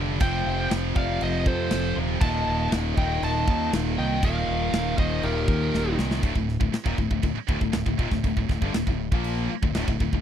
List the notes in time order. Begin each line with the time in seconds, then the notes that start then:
Already playing: F1 G2 D3 G3
0.20 F1 F2 C3 F3 C5 G5, kick, crash
0.46 F1
0.71 F1, snare, crash
0.94 F1 C3 F3 D5 F5, kick
0.98 F2
1.21 F1 C5 D#5, crash
1.46 F2 A4 C5, kick
1.71 F1, snare, crash
1.96 D#1 F2 C3 F3
2.21 D#1 D#2 A#2 D#3 D#5 A5, kick, crash
2.47 D#1
2.72 D#1, snare, crash
2.96 D#1 A#2 D#3 D#5 G5, kick
3.00 D#2
3.22 D#1 D#5 A5, crash
3.48 D#2, kick
3.73 D#1, snare, crash
3.97 C2 D#2 A#2 D#3 D#5 G5
4.22 D#1 D#2 A#2 D#3 A#4 F5, kick, crash
4.48 D#1
4.73 D#1, snare, crash
4.96 D#1 D#2 A#2 D#3 C5 D#5, kick
5.23 D#1 G4 A#4, crash
5.48 D#2, kick
5.74 D#1, snare
5.98 C2 D#2 A#2 D#3, snare
6.11 snare
6.23 D1 D2 A2, kick, crash
6.35 D1 D2 A2, kick
6.48 snare
6.61 D1 D2 A2, kick
6.72 muted overdriven electric guitar stroke, muted distorted electric guitar stroke, muted fingered electric bass stroke, snare, crash
6.86 D#1 D#2 A#2, kick
6.98 D1 D2 A2, kick
7.11 D1 D2 A2, kick
7.23 D1 D2 A2, kick, crash
7.35 muted overdriven electric guitar stroke, muted fingered electric bass stroke, muted distorted electric guitar stroke
7.49 D1 D2 A2, kick
7.61 D1 D2 A2, kick
7.73 D1 D2 A2, snare, crash
7.86 D1 D2 A2, kick
7.99 D#1 D#2 A#2, kick
8.11 D1 D2 A2, kick, snare
8.24 D1 D2 A2, kick, crash
8.37 D1 D2 A2, kick
8.49 D1 D2 A2, kick, snare
8.62 G1 G2 D3, kick
8.74 D1 D2 A2, snare, crash
8.87 D1 D2 A2, kick
9.12 A#1 A#2 F3 A#3, kick
9.24 crash
9.51 muted fingered electric bass stroke, muted overdriven electric guitar stroke, muted distorted electric guitar stroke
9.63 D1 D2 A2, kick
9.75 D1 D2 A2, snare, crash
9.88 D1 D2 A2, kick
10.00 D1 D2 A2, kick
10.13 D1 D2 A2, kick